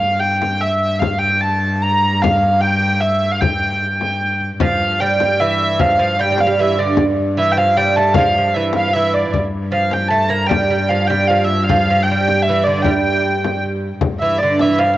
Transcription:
Already playing: viola da gamba G2, hurdy-gurdy F5
0.03 frame drum
0.20 hurdy-gurdy G5
0.42 frame drum
0.61 hurdy-gurdy E5, frame drum
1.00 hurdy-gurdy F5, frame drum
1.19 hurdy-gurdy G5
1.23 frame drum
1.41 hurdy-gurdy A5
1.82 hurdy-gurdy A#5, frame drum
2.22 hurdy-gurdy F5, frame drum
2.44 frame drum
2.61 hurdy-gurdy G5
3.00 hurdy-gurdy E5, frame drum
3.31 hurdy-gurdy F5
3.41 hurdy-gurdy G5, frame drum
4.01 frame drum
4.40 frame drum
4.59 viola da gamba G2, lute F3, hurdy-gurdy F5, frame drum
4.81 frame drum
5.00 lute G3, hurdy-gurdy G5
5.20 frame drum
5.40 lute E3, hurdy-gurdy E5, frame drum
5.79 lute F3, hurdy-gurdy F5, frame drum
5.99 lute F3, frame drum
6.19 lute G3, hurdy-gurdy G5
6.32 lute G3
6.38 hurdy-gurdy F5, frame drum
6.47 lute G3
6.59 lute E3, hurdy-gurdy E5, frame drum
6.79 lute D3, hurdy-gurdy D5
6.97 frame drum
7.17 frame drum
7.38 lute E3, hurdy-gurdy E5
7.52 hurdy-gurdy G5
7.57 lute F3, hurdy-gurdy F5
7.76 lute G3, hurdy-gurdy G5, frame drum
7.96 lute A3, hurdy-gurdy A5
8.14 lute F3, hurdy-gurdy F5, frame drum
8.34 lute F3, frame drum
8.54 lute E3, hurdy-gurdy E5
8.73 hurdy-gurdy F5, frame drum
8.88 lute F3
8.93 lute E3, hurdy-gurdy E5, frame drum
9.14 hurdy-gurdy D5, frame drum
9.34 viola da gamba G2, frame drum
9.54 frame drum
9.72 lute F3, hurdy-gurdy F5
9.91 hurdy-gurdy G5, frame drum
10.09 lute A3, hurdy-gurdy A5
10.13 frame drum
10.29 lute A#3, hurdy-gurdy A#5
10.47 lute G3, hurdy-gurdy G5
10.51 frame drum
10.70 lute G3, frame drum
10.89 lute F3, hurdy-gurdy F5
11.08 lute G3, hurdy-gurdy G5, frame drum
11.28 lute F3, hurdy-gurdy F5, frame drum
11.45 hurdy-gurdy E5
11.64 hurdy-gurdy F5
11.69 lute F3, frame drum
11.89 lute F3, frame drum
12.03 hurdy-gurdy G5
12.11 lute G3
12.28 frame drum
12.42 hurdy-gurdy E5
12.48 lute E3, frame drum
12.64 lute D3, hurdy-gurdy D5
12.82 lute G3, hurdy-gurdy G5, frame drum
13.44 frame drum
13.64 frame drum
14.01 viola da gamba G2, frame drum
14.20 lute E3, hurdy-gurdy E5
14.39 lute D3, hurdy-gurdy D5, frame drum
14.59 lute E3, hurdy-gurdy E5, frame drum
14.79 lute F3, hurdy-gurdy F5
14.93 lute F3

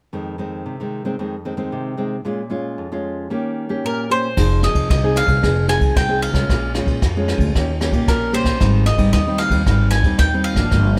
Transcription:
0.13 nylon-string guitar F2 D#3 G#3 C4
0.38 nylon-string guitar D#3 G#3 C4
0.66 nylon-string guitar C3
0.80 nylon-string guitar D#3 G#3 C4
1.05 nylon-string guitar D#3 G#3 C4
1.19 nylon-string guitar F2 D#3 G#3 C4
1.45 nylon-string guitar D#3 G#3 C4
1.57 nylon-string guitar D#3 G#3 C4
1.72 nylon-string guitar C3
1.97 nylon-string guitar D#3 G#3 C4
2.25 nylon-string guitar A#2 G#3 C#4 F4
2.50 nylon-string guitar G#3 C#4 F4
2.78 nylon-string guitar F2
2.92 nylon-string guitar G#3 C#4 F4
3.30 nylon-string guitar D#3 A#3 C#4 G4
3.69 nylon-string guitar A#3 C#4 G4
3.84 nylon-string guitar A#2, mandolin A#4
4.10 nylon-string guitar A#3 C#4 G4, mandolin C5
4.37 upright bass F1, nylon-string guitar F3 C4 D#4 G#4, kick, cross-stick, crash
4.62 nylon-string guitar C4 D#4 G#4, mandolin D#5, cross-stick, ride
4.73 upright bass F1, kick, ride
4.89 upright bass C2, nylon-string guitar C3, mandolin D#5, kick, cross-stick, ride
5.03 nylon-string guitar C4 D#4 G#4
5.16 mandolin F5, cross-stick, ride
5.26 upright bass C2, nylon-string guitar C4 D#4 G#4, kick, ride
5.42 upright bass F1, nylon-string guitar F3 C4 D#4 G#4, kick, cross-stick, ride
5.67 nylon-string guitar C4 D#4 G#4, mandolin G#5, cross-stick, ride
5.80 upright bass C2, kick, ride
5.95 upright bass C2, nylon-string guitar C3, mandolin G5, kick, cross-stick, ride
6.09 nylon-string guitar C4 D#4 G#4
6.22 mandolin F5, ride
6.32 upright bass C2, nylon-string guitar G#3 C#4 F4, kick, cross-stick, ride
6.49 upright bass A#1, nylon-string guitar A#2, kick, cross-stick, ride
6.74 nylon-string guitar G#3 C#4 F4, cross-stick, ride
6.86 upright bass A#1, kick, ride
7.02 upright bass F2, nylon-string guitar F2, kick, cross-stick, ride
7.16 nylon-string guitar G#3 C#4 F4
7.28 cross-stick, ride
7.38 upright bass D2, kick, ride
7.55 upright bass D#2, nylon-string guitar D#3 A#3 C#4 G4, kick, cross-stick, ride
7.80 nylon-string guitar A#3 C#4 G4, cross-stick, ride
7.91 upright bass A#1, nylon-string guitar A#3 C#4 G4, kick, ride
8.07 upright bass A#1, nylon-string guitar A#2, mandolin A#4, kick, cross-stick, ride
8.32 nylon-string guitar A#3 C#4 G4, mandolin C5, ride
8.44 upright bass A#1, kick, cross-stick, ride
8.60 upright bass G#1, nylon-string guitar G#2 G3 C4 D#4, kick, cross-stick, ride
8.86 mandolin D#5, cross-stick, ride
8.97 upright bass G#1, nylon-string guitar G3 C4 D#4, kick, ride
9.13 upright bass D#2, nylon-string guitar D#3, mandolin D#5, kick, cross-stick, ride
9.27 nylon-string guitar G3 C4 D#4
9.38 mandolin F5, cross-stick, ride
9.50 upright bass D#2, nylon-string guitar G3 C4 D#4, kick, ride
9.66 upright bass G#1, nylon-string guitar G#2 G3 C4 D#4, kick, cross-stick, ride
9.91 mandolin G#5, cross-stick, ride
10.02 upright bass D#2, nylon-string guitar G3 C4 D#4, kick, ride
10.18 upright bass D#2, nylon-string guitar D#3, mandolin G5, kick, cross-stick, ride
10.34 nylon-string guitar G3 C4 D#4
10.44 mandolin F5, ride
10.55 upright bass G#1, nylon-string guitar F3 A#3 D4, kick, cross-stick, ride
10.71 upright bass G1, nylon-string guitar G2, kick, cross-stick, ride

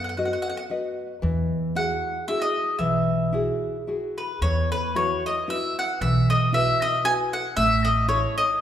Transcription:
Already playing: upright bass F#2, nylon-string guitar B3
0.04 mandolin F#5
0.09 mandolin F#5
0.17 nylon-string guitar F#4 B4 D#5, mandolin F#5
0.25 mandolin F#5
0.33 mandolin F#5
0.42 mandolin F#5
0.49 mandolin F#5
0.57 mandolin F#5
0.70 nylon-string guitar F#4 B4 D#5
1.22 upright bass E2, nylon-string guitar E3
1.75 nylon-string guitar E4 F#4 G#4, mandolin F#5
2.28 nylon-string guitar E4 F#4 G#4, mandolin E5
2.42 mandolin D#5
2.79 upright bass B1, nylon-string guitar E3, mandolin E5
3.32 nylon-string guitar E4 F#4 G#4
3.87 nylon-string guitar E4 F#4 G#4
4.18 mandolin B4
4.42 upright bass E2, nylon-string guitar E3, mandolin C#5
4.72 mandolin B4
4.95 nylon-string guitar E4 F#4 B4, mandolin C#5
5.26 mandolin D#5
5.48 nylon-string guitar E4 F#4 B4, mandolin E5
5.79 mandolin F#5
6.01 upright bass B1, nylon-string guitar E3, mandolin E5
6.30 mandolin D#5
6.53 nylon-string guitar E4 F#4 B4, mandolin E5
6.82 mandolin D#5
7.04 nylon-string guitar E4 F#4 B4, mandolin G#5
7.33 mandolin F#5
7.57 upright bass A1, nylon-string guitar A3, mandolin E5
7.85 mandolin D#5
8.08 nylon-string guitar E4 A4 C#5, mandolin C#5
8.38 mandolin D#5

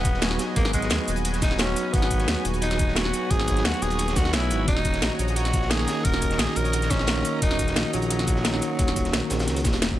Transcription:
Already playing: analog synth bass D#1, tine electric piano F#3 B3 D#4 G#4, tenor saxophone B3, analog synth pad F#4 B4 D#5 G#5
0.05 kick, closed hi-hat, cabasa
0.14 snare
0.20 tine electric piano F#3 B3 D#4 F#4, snare, closed hi-hat
0.31 snare
0.39 snare, closed hi-hat, cabasa
0.53 analog synth bass G#1, tine electric piano F#3 B3, tenor saxophone A#3, kick, closed hi-hat
0.57 tine electric piano D#4 G#4
0.65 snare, closed hi-hat
0.73 tenor saxophone G#3, kick, closed hi-hat, cabasa
0.82 snare, closed hi-hat
0.90 analog synth bass D#2, snare, closed hi-hat
1.08 analog synth bass D#1, closed hi-hat, cabasa
1.16 closed hi-hat, cabasa
1.25 closed hi-hat
1.33 snare, closed hi-hat, cabasa
1.42 tenor saxophone D#4, kick, snare, closed hi-hat, cabasa
1.51 snare
1.57 tine electric piano F#3 B3 D#4 F#4, tenor saxophone C#4, snare, closed hi-hat
1.67 snare
1.76 closed hi-hat, cabasa
1.90 analog synth bass G#1, tine electric piano F#3 B3, tenor saxophone B3, analog synth pad C#5, kick, closed hi-hat
1.95 tine electric piano D#4 G#4, closed hi-hat
2.02 snare
2.11 kick, closed hi-hat, cabasa
2.19 snare, closed hi-hat
2.28 analog synth bass D#2, snare, closed hi-hat
2.45 analog synth bass D#1, closed hi-hat, cabasa
2.54 closed hi-hat, cabasa
2.62 tenor saxophone D#4, closed hi-hat
2.71 snare, closed hi-hat, cabasa
2.79 kick, closed hi-hat, cabasa
2.88 snare
2.95 tine electric piano F#3 B3 D#4 F#4, tenor saxophone F#4, snare, closed hi-hat
3.05 snare
3.14 closed hi-hat, cabasa
3.27 analog synth bass G#1, tine electric piano F#3 B3, tenor saxophone G#4, kick, closed hi-hat
3.32 tine electric piano D#4 G#4
3.39 snare, closed hi-hat
3.48 kick, closed hi-hat, cabasa
3.57 snare, closed hi-hat
3.65 analog synth bass D#2, tenor saxophone F#4, snare, closed hi-hat
3.74 closed hi-hat
3.82 analog synth bass D#1, tenor saxophone G#4, closed hi-hat, cabasa
3.90 closed hi-hat, cabasa
3.99 closed hi-hat
4.08 snare, closed hi-hat, cabasa
4.16 analog synth bass D#2, tenor saxophone F#4, kick, snare, closed hi-hat, cabasa
4.25 snare
4.33 analog synth bass B1, tenor saxophone E4, snare, closed hi-hat
4.42 snare
4.49 analog synth bass G#1, tine electric piano F#3 B3 D#4 B4, closed hi-hat, cabasa
4.64 analog synth bass D#1, tine electric piano D#3 A#3, tenor saxophone D#4, analog synth pad D#5 A#5, kick, closed hi-hat
4.69 tine electric piano C#4 F#4
4.77 snare
4.85 kick, closed hi-hat, cabasa
4.93 snare, closed hi-hat
5.02 analog synth bass A#1, snare, closed hi-hat
5.19 analog synth bass A#1, closed hi-hat, cabasa
5.28 tenor saxophone G#4, closed hi-hat, cabasa
5.36 tenor saxophone F#4, closed hi-hat
5.45 snare, closed hi-hat, cabasa
5.53 kick, closed hi-hat, cabasa
5.62 snare
5.69 tine electric piano D#3 A#3 C#4 D#4, tenor saxophone G#4, snare, closed hi-hat
5.79 snare
5.88 snare, closed hi-hat, cabasa
6.02 analog synth bass D#1, tine electric piano D#3 A#3, tenor saxophone A#4, kick, closed hi-hat
6.06 tine electric piano C#4 F#4
6.13 snare, closed hi-hat
6.22 kick, closed hi-hat, cabasa
6.31 snare, closed hi-hat
6.39 analog synth bass A#1, tenor saxophone G#4, snare, closed hi-hat
6.56 analog synth bass A#1, tenor saxophone A#4, closed hi-hat, cabasa
6.65 closed hi-hat, cabasa
6.73 closed hi-hat
6.82 snare, closed hi-hat, cabasa
6.90 tenor saxophone C#4, kick, snare, closed hi-hat, cabasa
6.99 snare
7.06 tine electric piano D#3 A#3 C#4 D#4, snare, closed hi-hat
7.16 snare
7.25 closed hi-hat, cabasa
7.38 analog synth bass D#1, tine electric piano D#3 A#3, tenor saxophone D#4, kick, closed hi-hat
7.43 tine electric piano C#4 F#4, closed hi-hat
7.51 snare
7.59 kick, closed hi-hat, cabasa
7.67 snare, closed hi-hat
7.76 analog synth bass A#1, snare, closed hi-hat
7.93 analog synth bass A#1, tenor saxophone F#3, closed hi-hat, cabasa
8.02 closed hi-hat, cabasa
8.11 closed hi-hat
8.19 snare, closed hi-hat, cabasa
8.28 kick, closed hi-hat, cabasa
8.36 snare
8.43 tine electric piano D#3 A#3 C#4 D#4, snare, closed hi-hat
8.54 snare
8.62 closed hi-hat, cabasa
8.76 analog synth bass D#1, tine electric piano D#3 A#3, kick, closed hi-hat
8.80 tine electric piano C#4 F#4
8.87 snare, closed hi-hat
8.96 kick, closed hi-hat, cabasa
9.05 snare, closed hi-hat
9.13 analog synth bass A#1, snare, closed hi-hat
9.30 analog synth bass A#1, snare, closed hi-hat, cabasa
9.39 snare, closed hi-hat, cabasa
9.47 analog synth bass C#2, snare, closed hi-hat
9.56 closed hi-hat, cabasa
9.64 analog synth bass A#1, kick, snare, closed hi-hat, cabasa
9.73 analog synth bass D#1, snare, closed hi-hat
9.82 snare, closed hi-hat
9.91 kick, snare

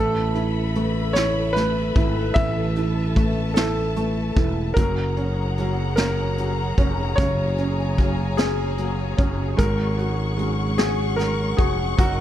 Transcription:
Already playing: fretless electric bass A1, steel-string acoustic guitar A3 B3 E4 A4, felt piano A3, grand piano A4, string section A4 B4 E5 B5
0.35 steel-string acoustic guitar B3 E4 A4, felt piano E4, closed hi-hat
0.74 steel-string acoustic guitar A3 B3 E4 A4, felt piano A3, closed hi-hat
1.13 steel-string acoustic guitar B3 E4 A4, felt piano E4, grand piano C#5, snare, closed hi-hat
1.18 steel-string acoustic guitar A3
1.53 steel-string acoustic guitar A3 B3, felt piano A3, grand piano B4, snare, closed hi-hat
1.57 steel-string acoustic guitar E4 A4
1.95 fretless electric bass G#1, steel-string acoustic guitar B3 E4 A4, felt piano E4, kick, closed hi-hat
2.34 fretless electric bass A1, felt piano E3, steel-string acoustic guitar A3 B3 E4 A4, grand piano E5, string section A5, kick, closed hi-hat
2.75 steel-string acoustic guitar B3 E4 A4, felt piano E4, closed hi-hat
3.14 steel-string acoustic guitar A3 B3 E4 A4, felt piano A3, kick, closed hi-hat
3.54 steel-string acoustic guitar A3 B3 E4 A4, felt piano E4, grand piano A4, snare, closed hi-hat
3.96 steel-string acoustic guitar A3 B3 E4 A4, felt piano A3, closed hi-hat
4.36 fretless electric bass E1, steel-string acoustic guitar B3 E4 A4, felt piano E4, kick, closed hi-hat
4.74 fretless electric bass F#1, steel-string acoustic guitar F#3 A#3, felt piano F#3, string section G#4 C#5 F#5 A#5, grand piano A#4, kick, closed hi-hat
4.78 steel-string acoustic guitar C#4 F#4 G#4
5.17 felt piano C#4, steel-string acoustic guitar C#4 F#4 G#4, closed hi-hat
5.57 felt piano F#3, steel-string acoustic guitar A#3 C#4 F#4 G#4, closed hi-hat
5.96 steel-string acoustic guitar F#3 A#3 C#4 F#4 G#4, felt piano C#4, grand piano A#4, snare, closed hi-hat
6.37 felt piano F#3, steel-string acoustic guitar A#3 C#4 F#4 G#4, closed hi-hat
6.78 fretless electric bass F1, felt piano C#4, steel-string acoustic guitar C#4 F#4 G#4, kick, closed hi-hat
7.16 fretless electric bass F#1, felt piano C#3, steel-string acoustic guitar F#3 A#3 C#4, grand piano C#5, string section G#5, kick, closed hi-hat
7.20 steel-string acoustic guitar F#4 G#4
7.58 felt piano C#4, steel-string acoustic guitar F#4 G#4, closed hi-hat
7.62 steel-string acoustic guitar C#4
7.98 felt piano F#3, steel-string acoustic guitar A#3 C#4 F#4 G#4, kick, closed hi-hat
8.37 steel-string acoustic guitar F#3 A#3 C#4 F#4 G#4, felt piano C#4, grand piano G#4, snare, closed hi-hat
8.78 felt piano F#3, steel-string acoustic guitar A#3 C#4 F#4, closed hi-hat
8.83 steel-string acoustic guitar G#4
9.17 fretless electric bass F#1, felt piano C#4, steel-string acoustic guitar F#4 G#4, kick, closed hi-hat
9.23 steel-string acoustic guitar C#4
9.57 fretless electric bass G#1, steel-string acoustic guitar G#2 C#3 F#3 C#4 F#4, felt piano G#3, grand piano A#4, string section F#5 C#6, kick, closed hi-hat
9.61 steel-string acoustic guitar G#4
9.97 steel-string acoustic guitar C#4 F#4 G#4, felt piano F#4, closed hi-hat
10.02 steel-string acoustic guitar F#3
10.37 steel-string acoustic guitar F#3 C#4 F#4, felt piano G#3, closed hi-hat
10.42 steel-string acoustic guitar G#4
10.77 steel-string acoustic guitar G#2 C#3 F#3 C#4 F#4 G#4, felt piano F#4, grand piano G#4, snare, closed hi-hat
11.16 steel-string acoustic guitar F#3 C#4, felt piano G#3, grand piano A#4, snare, closed hi-hat
11.21 steel-string acoustic guitar F#4 G#4
11.57 fretless electric bass F1, steel-string acoustic guitar C#4 F#4 G#4, felt piano F#4, grand piano G#4, kick, closed hi-hat
11.61 steel-string acoustic guitar F#3
11.97 fretless electric bass F#1, felt piano F#3, steel-string acoustic guitar F#3 C#4 D#4 A#4, grand piano F#4, string section A#4 D#5, kick, closed hi-hat

